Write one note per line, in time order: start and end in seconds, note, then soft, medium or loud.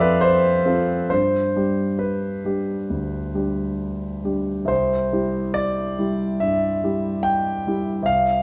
0.00 1.13 F2 medium
0.00 0.63 C4 medium
0.00 0.63 F4 soft
0.00 0.63 A4 medium
0.00 0.22 B4 medium
0.00 1.13 D5 loud
0.00 1.13 E5 loud
0.00 1.13 F5 loud
0.21 1.09 C5 medium
0.66 1.07 C4 soft
0.66 1.07 F4 soft
0.66 1.07 A4 soft
1.10 1.55 G2 medium
1.10 2.00 C5 medium
1.56 2.41 G3 soft
1.56 2.41 D4 soft
1.56 2.41 G4 soft
1.99 4.24 B4 medium
2.45 2.85 G3 soft
2.45 2.86 D4 soft
2.45 2.86 G4 soft
2.90 3.34 D2 soft
3.34 4.21 G3 soft
3.34 4.21 D4 soft
3.34 4.21 G4 soft
4.24 4.65 G3 soft
4.24 4.65 D4 soft
4.24 4.66 G4 soft
4.65 5.09 C2 medium
4.65 5.55 C5 medium
5.12 5.94 G3 soft
5.12 5.94 E4 soft
5.12 5.95 G4 soft
5.54 6.39 D5 medium
5.99 6.37 G3 soft
5.99 6.37 E4 soft
5.99 6.37 G4 soft
6.40 6.82 G2 soft
6.40 7.25 E5 medium
6.84 7.63 G3 soft
6.84 7.63 E4 soft
6.84 7.63 G4 soft
7.23 8.06 G5 medium
7.67 8.03 G3 soft
7.67 8.03 E4 soft
7.67 8.04 G4 soft
8.02 8.43 C2 medium
8.02 8.43 F5 medium